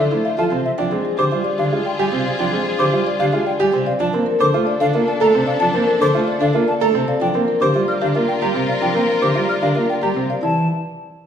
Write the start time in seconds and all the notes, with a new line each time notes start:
Already playing: F4 C5
0.00 D4 A4
0.11 A3 E4
0.25 E5 F5
0.38 F3 F4 A4 A5
0.52 C3 C4
0.65 E5
0.78 F3 D4 F4 G#4 G5
0.92 G#3 C4
1.05 G#4
1.18 D3 G4 C5 D6
1.32 G3 F4
1.44 D5
1.58 D3 D4 G4 F5
1.72 G#3 F4
1.85 D5 G5
1.99 G3 G4 G#5
2.13 C3 C4
2.25 D5 F5
2.39 F3 D4 G5
2.53 G#3 C4
2.66 G#4
2.79 D3 G4 C5 D6
2.93 G3 F4
3.06 D5
3.20 D3 D4 G4 F5
3.33 G#3 F4
3.46 D5 G5
3.60 G3 G4 G#5
3.73 C3 C4
3.86 D5 F5
4.00 F3 D4 A4 A5
4.14 A#3 C4
4.26 A#4
4.40 D3 A4 C5 D6
4.54 A3 F4
4.67 D5
4.80 D3 D4 A4 F5
4.95 A#3 F4
5.07 D5 A5
5.20 A3 A4 A#5
5.35 C3 C4
5.46 D5 F5
5.60 F3 D4 A5
5.75 A#3 C4
5.86 A#4
6.00 D3 A4 C5 D6
6.14 A3 F4
6.28 D5
6.41 D3 D4 A4 F5
6.55 A#3 F4
6.68 D5 A5
6.81 A3 A4 A#5
6.95 C3 C4
7.08 D5 F5
7.21 F3 D4 F4 A#4 G5
7.35 A#3 C4
7.48 A#4
7.61 D3 G4 C5 D6
7.75 G3 F4
7.88 D5 F6
8.01 D3 D4 G4 F5
8.15 A#3 F4
8.28 D5 G5
8.42 G3 G4 A#5
8.55 C3 C4
8.68 D5 F5
8.82 F3 D4 G5
8.95 A#3 C4
9.09 A#4
9.22 D3 G4 C5 D6
9.35 G3 F4
9.49 D5 F6
9.62 D3 D4 G4 F5
9.76 A#3 F4
9.89 D5 G5
10.03 G3 G4 A#5
10.16 C3 C4
10.29 D5 F5
10.43 E3 E4 D5 A5